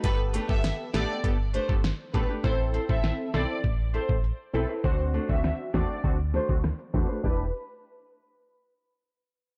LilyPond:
<<
  \new Staff \with { instrumentName = "Violin section" } { \time 4/4 \key e \minor \tempo 4 = 100 b'16 r8 e''8 r16 d''8 r8 c''16 r8. b'16 r16 | c''16 r8 e''8 r16 d''8 r8 c''16 r8. b'16 r16 | c''16 r8 e''8 r16 d''8 r8 c''16 r8. b'16 r16 | b'8 r2. r8 | }
  \new Staff \with { instrumentName = "Nylon-string guitar" } { \time 4/4 \key e \minor r8 <a d' g' b'>16 r8. <a d' g' b'>16 r8. <a d' g' b'>16 r8. <a d' g' b'>16 <a d' g' b'>16 | r8 <c' e' a' c''>16 r8. <c' e' a' c''>16 r8. <c' e' a' c''>16 r8. <c' e' a' c''>16 <c' e' a' c''>16 | r8 <a d' fis' c''>16 r8. <a d' fis' c''>16 r8. <a d' fis' c''>16 r8. <a d' fis' c''>16 <a d' fis' c''>16 | <d' g' b' d''>16 r2. r8. | }
  \new Staff \with { instrumentName = "Synth stab" } { \time 4/4 \key e \minor <b g' a'>8. <b g' a'>8. <b g' a'>8 <b g' a'>16 r8 <b g' a'>16 r8 <b g' a'>16 r16 | <c' e' a'>8. <c' e' a'>8. <c' e' a'>8 r4. <c' e' a'>16 r16 | <c' d' fis'>8. <c' d' fis'>8. <c' d' fis'>8 <c' d' fis'>16 r8 <c' d' fis'>16 r8 <c' d' fis'>16 r16 | <d' e' g'>8 r2. r8 | }
  \new Staff \with { instrumentName = "FM bass" } { \clef bass \time 4/4 \key e \minor g,,8. g,,8 r16 a,,16 r16 g,,8. g,,8 r16 a,,16 r16 | a,,8. a,,8 r16 b,,16 r16 a,,8. a,,8 r16 b,,16 r16 | d,8. d,8 r16 e,16 r16 d,8. d,8 r16 e,16 r16 | e,,8 r2. r8 | }
  \new DrumStaff \with { instrumentName = "Drums" } \drummode { \time 4/4 <hh bd>8 hh16 bd16 <hh sn>8 <hh sn>8 <hh bd>8 hh16 bd16 <hh sn>8 <hh bd>8 | <hh bd>8 hh16 bd16 <hh sn>8 <hh sn>8 <hh bd>8 hh16 bd16 hh8 hh8 | <hh bd>8 hh16 bd16 <hh ss sn>8 <hh bd sn>8 <hh bd>16 hh16 <hh sn>16 bd16 <hh ss sn>16 hh16 <hh bd>8 | <cymc bd>4 r4 r4 r4 | }
>>